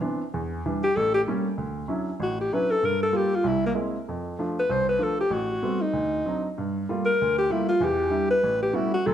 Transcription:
0.01 0.21 E3 medium
0.01 0.21 B3 medium
0.01 0.21 C4 soft
0.01 0.21 D4 medium
0.34 0.59 E2 medium
0.66 0.84 E3 medium
0.66 0.84 G3 medium
0.66 0.84 D4 medium
0.84 0.98 G4 medium
0.96 1.22 A1 medium
0.96 1.14 A4 medium
1.15 1.21 G4 medium
1.27 1.47 G3 medium
1.27 1.46 A3 soft
1.27 1.47 A#3 medium
1.27 1.47 C#4 medium
1.57 1.84 D2 medium
1.88 2.08 F#3 medium
1.88 2.08 C#4 soft
1.88 2.09 D4 medium
1.88 2.09 E4 medium
2.20 2.46 A1 medium
2.20 2.39 F#4 medium
2.41 2.55 G4 medium
2.52 2.71 F#3 medium
2.52 2.72 C#4 medium
2.52 2.72 D4 soft
2.52 2.72 E4 medium
2.52 2.72 B4 medium
2.71 2.87 A4 medium
2.83 3.09 G2 medium
2.83 3.02 A#4 medium
3.03 3.18 A4 medium
3.12 3.33 G3 medium
3.12 3.33 A#3 soft
3.12 3.33 F4 medium
3.12 3.37 G4 medium
3.36 3.49 F4 medium
3.44 3.71 C2 medium
3.44 3.65 E4 medium
3.67 3.73 A#3 medium
3.75 3.95 G#3 medium
3.75 3.95 A#3 soft
3.75 3.96 C4 soft
3.75 3.95 E4 medium
4.09 4.34 F2 medium
4.39 4.59 F3 medium
4.39 4.58 A3 medium
4.39 4.59 D4 medium
4.59 4.73 B4 medium
4.70 4.96 C2 medium
4.70 4.88 C5 loud
4.89 5.05 B4 medium
4.99 5.20 F3 medium
4.99 5.20 A3 medium
4.99 5.20 D4 medium
5.04 5.20 A4 medium
5.21 5.35 G4 medium
5.30 5.58 A1 medium
5.30 5.83 F#4 medium
5.62 5.83 G3 medium
5.62 5.83 A3 medium
5.62 5.83 B3 medium
5.62 5.83 C4 medium
5.82 6.56 D#4 medium
5.93 6.20 D2 medium
6.26 6.45 F#3 medium
6.26 6.46 C4 medium
6.26 6.45 D4 soft
6.26 6.46 D#4 medium
6.58 6.84 G2 medium
6.89 7.08 G3 medium
6.89 7.08 A3 soft
6.89 7.09 A#3 soft
6.89 7.09 F4 medium
7.05 7.35 A#4 medium
7.21 7.47 D2 medium
7.38 7.54 G4 medium
7.50 7.70 G3 medium
7.50 7.70 A3 medium
7.50 7.70 A#3 medium
7.50 7.68 E4 medium
7.50 7.71 F4 medium
7.69 7.86 F4 medium
7.80 8.08 E2 medium
7.80 8.07 E3 medium
7.80 8.30 G4 medium
8.10 8.31 G3 medium
8.10 8.31 D4 medium
8.10 8.32 E4 medium
8.31 8.60 B4 loud
8.43 8.70 A1 medium
8.63 8.77 G4 medium
8.73 8.94 G3 medium
8.73 8.94 A3 soft
8.73 8.94 B3 medium
8.73 8.94 C#4 medium
8.73 8.93 E4 medium
8.73 8.94 F#4 medium
8.94 9.08 F#4 loud
9.06 9.14 D2 medium
9.06 9.14 F#3 medium
9.06 9.14 A4 medium

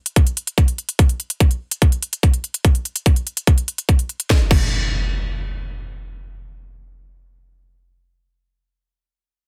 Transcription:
0.06 closed hi-hat medium
0.16 kick loud
0.16 closed hi-hat medium
0.27 closed hi-hat medium
0.37 closed hi-hat medium
0.47 closed hi-hat soft
0.58 kick loud
0.58 closed hi-hat medium
0.68 closed hi-hat medium
0.78 closed hi-hat soft
0.89 closed hi-hat medium
0.99 kick loud
0.99 closed hi-hat medium
1.09 closed hi-hat soft
1.20 closed hi-hat soft
1.30 closed hi-hat medium
1.40 kick loud
1.40 closed hi-hat medium
1.51 closed hi-hat medium
1.71 closed hi-hat medium
1.82 kick loud
1.82 closed hi-hat medium
1.92 closed hi-hat medium
2.03 closed hi-hat medium
2.13 closed hi-hat medium
2.23 kick loud
2.23 closed hi-hat medium
2.34 closed hi-hat medium
2.44 closed hi-hat soft
2.54 closed hi-hat medium
2.65 kick loud
2.65 closed hi-hat medium
2.75 closed hi-hat medium
2.85 closed hi-hat soft
2.96 closed hi-hat medium
3.06 kick loud
3.06 closed hi-hat medium
3.16 closed hi-hat medium
3.27 closed hi-hat soft
3.37 closed hi-hat medium
3.47 kick loud
3.47 closed hi-hat medium
3.58 closed hi-hat medium
3.68 closed hi-hat medium
3.78 closed hi-hat medium
3.89 kick loud
3.89 closed hi-hat medium
3.99 closed hi-hat medium
4.09 closed hi-hat soft
4.20 closed hi-hat medium
4.30 kick loud
4.30 snare medium
4.30 impact medium
4.51 kick loud
4.51 crash medium

